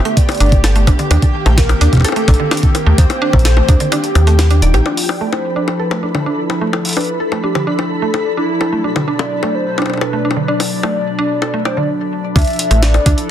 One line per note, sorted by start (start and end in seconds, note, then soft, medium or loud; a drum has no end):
0.00 1.11 D3 medium
0.00 1.11 A3 medium
0.00 1.11 B3 medium
0.00 4.87 G4 medium
0.00 6.04 G4 medium
0.00 1.11 B4 medium
0.00 0.19 E5 loud
0.00 4.87 G5 medium
0.05 0.10 A3 loud
0.05 closed hi-hat soft
0.17 0.87 D5 medium
0.17 kick loud
0.17 closed hi-hat medium
0.29 closed hi-hat soft
0.29 high bongo medium
0.32 closed hi-hat soft
0.35 closed hi-hat soft
0.38 0.92 G1 medium
0.38 0.48 D4 loud
0.38 closed hi-hat soft
0.40 closed hi-hat medium
0.43 closed hi-hat soft
0.46 closed hi-hat soft
0.49 kick loud
0.49 closed hi-hat soft
0.52 closed hi-hat soft
0.64 0.71 A4 medium
0.64 snare loud
0.64 closed hi-hat medium
0.64 high bongo medium
0.76 0.83 A3 medium
0.76 closed hi-hat soft
0.87 0.94 D4 medium
0.87 kick loud
0.87 closed hi-hat medium
0.87 high bongo medium
0.99 1.03 D3 medium
0.99 closed hi-hat soft
1.11 1.18 D#2 loud
1.11 4.86 D#3 medium
1.11 1.18 D4 loud
1.11 closed hi-hat medium
1.11 high bongo medium
1.18 4.86 A#3 medium
1.22 kick loud
1.22 closed hi-hat soft
1.46 1.74 A#1 loud
1.46 1.50 A3 loud
1.46 closed hi-hat soft
1.46 high bongo medium
1.53 5.87 C4 medium
1.58 2.01 A#4 loud
1.58 kick loud
1.58 snare loud
1.58 closed hi-hat medium
1.69 closed hi-hat soft
1.69 high bongo medium
1.81 1.88 D#2 medium
1.81 1.88 D4 loud
1.81 closed hi-hat medium
1.93 kick medium
1.93 closed hi-hat soft
1.93 high bongo soft
1.95 kick medium
1.95 high bongo soft
1.97 kick medium
2.00 kick medium
2.00 high bongo soft
2.02 2.76 A4 loud
2.02 2.12 A4 medium
2.02 kick soft
2.02 closed hi-hat medium
2.02 high bongo soft
2.08 high bongo soft
2.12 2.23 A3 medium
2.12 closed hi-hat soft
2.12 high bongo soft
2.28 2.35 A#1 loud
2.28 2.35 D4 medium
2.28 kick loud
2.28 closed hi-hat medium
2.28 high bongo medium
2.34 closed hi-hat soft
2.40 2.44 D3 medium
2.51 2.59 D4 loud
2.51 snare loud
2.51 high bongo medium
2.57 closed hi-hat medium
2.63 kick loud
2.63 closed hi-hat soft
2.75 2.98 A#4 loud
2.75 closed hi-hat medium
2.75 high bongo medium
2.87 2.94 D#2 medium
2.87 2.91 A3 loud
2.98 3.05 D#2 loud
2.98 3.93 C5 loud
2.98 kick loud
2.98 closed hi-hat loud
3.10 closed hi-hat soft
3.10 high bongo medium
3.22 3.29 D4 loud
3.33 3.61 A#1 loud
3.33 kick loud
3.33 high bongo medium
3.39 closed hi-hat soft
3.45 3.52 A4 medium
3.45 snare loud
3.45 closed hi-hat loud
3.57 3.64 A3 medium
3.57 high bongo medium
3.69 3.76 D#2 medium
3.69 3.76 D4 medium
3.69 kick loud
3.69 closed hi-hat medium
3.80 3.85 D3 medium
3.80 closed hi-hat soft
3.92 3.99 D4 loud
3.92 4.62 G4 medium
3.92 closed hi-hat medium
3.92 high bongo medium
4.04 closed hi-hat soft
4.15 4.62 D#2 loud
4.15 closed hi-hat medium
4.15 high bongo medium
4.27 4.34 A3 loud
4.27 closed hi-hat soft
4.39 snare loud
4.39 closed hi-hat medium
4.39 high bongo medium
4.51 4.61 D4 medium
4.51 closed hi-hat soft
4.62 4.75 D#1 medium
4.62 4.87 D#4 medium
4.62 4.73 D5 medium
4.62 closed hi-hat medium
4.74 4.81 A#1 loud
4.74 4.81 G4 loud
4.74 closed hi-hat soft
4.74 high bongo medium
4.86 8.61 F3 medium
4.86 4.93 D4 loud
4.86 5.11 F4 medium
4.86 11.89 A4 medium
4.86 11.89 B5 medium
4.86 high bongo medium
4.97 13.31 D4 medium
4.97 10.11 E4 medium
4.97 open hi-hat medium
5.09 5.34 D5 loud
5.09 13.31 D5 medium
5.09 high bongo medium
5.21 5.25 A3 loud
5.32 5.81 C5 loud
5.32 high bongo soft
5.41 10.04 A4 medium
5.56 5.63 D4 loud
5.68 high bongo soft
5.79 5.87 A4 medium
5.79 6.50 B4 medium
5.91 5.98 A3 medium
5.91 high bongo medium
6.03 6.10 D4 medium
6.15 6.19 D3 medium
6.15 high bongo soft
6.26 6.33 D4 loud
6.50 high bongo soft
6.61 6.66 A3 medium
6.73 6.84 A4 medium
6.73 high bongo medium
6.85 open hi-hat medium
6.89 open hi-hat medium
6.93 7.04 D4 medium
6.93 open hi-hat soft
6.97 7.18 B4 medium
6.97 open hi-hat soft
6.97 high bongo soft
7.01 open hi-hat soft
7.04 open hi-hat soft
7.20 7.27 A4 medium
7.20 7.31 A4 medium
7.32 7.39 A3 medium
7.32 high bongo soft
7.44 7.51 D4 medium
7.44 7.69 G4 medium
7.55 7.60 D3 medium
7.55 high bongo medium
7.67 7.74 D4 loud
7.67 8.37 A4 loud
7.79 high bongo soft
8.02 8.06 A3 medium
8.14 high bongo soft
8.37 8.44 D4 medium
8.37 8.86 E4 medium
8.61 12.36 F#3 medium
8.61 8.68 A4 medium
8.61 high bongo soft
8.72 8.80 A3 medium
8.83 13.15 B2 medium
8.83 8.91 D4 medium
8.83 9.09 F#4 loud
8.96 9.00 D3 medium
8.96 high bongo soft
9.08 9.15 D4 medium
9.08 9.56 D5 loud
9.19 high bongo medium
9.43 9.47 A3 loud
9.43 high bongo soft
9.54 10.03 C5 loud
9.78 9.85 D4 loud
9.78 high bongo soft
9.82 high bongo soft
9.86 high bongo soft
9.90 high bongo soft
9.94 high bongo soft
9.97 10.48 B4 loud
9.97 high bongo soft
10.01 10.08 A4 medium
10.01 high bongo medium
10.13 10.20 A3 medium
10.25 10.32 D4 medium
10.31 high bongo soft
10.37 10.41 D3 medium
10.48 10.55 D4 loud
10.48 11.61 D5 loud
10.60 open hi-hat medium
10.60 high bongo soft
10.83 10.88 A3 loud
10.83 high bongo medium
11.19 11.26 D4 loud
11.42 11.49 A4 medium
11.42 high bongo soft
11.54 11.61 A3 medium
11.65 11.79 C5 loud
11.65 11.73 D5 medium
11.65 high bongo medium
11.77 11.84 D3 medium
11.77 11.89 D5 loud
12.36 12.43 D2 medium
12.36 13.31 F3 medium
12.36 12.43 D4 loud
12.36 12.84 E5 loud
12.36 kick loud
12.36 closed hi-hat medium
12.39 closed hi-hat soft
12.42 closed hi-hat soft
12.45 closed hi-hat soft
12.47 closed hi-hat soft
12.50 13.31 A4 medium
12.50 closed hi-hat soft
12.53 13.31 E4 medium
12.53 closed hi-hat soft
12.56 closed hi-hat soft
12.59 closed hi-hat loud
12.71 12.99 A1 loud
12.71 12.75 A3 loud
12.71 closed hi-hat medium
12.83 13.29 D5 loud
12.83 snare loud
12.83 closed hi-hat medium
12.94 closed hi-hat soft
12.94 high bongo medium
13.06 13.13 D2 medium
13.06 13.13 D4 loud
13.06 kick loud
13.06 closed hi-hat loud
13.18 closed hi-hat medium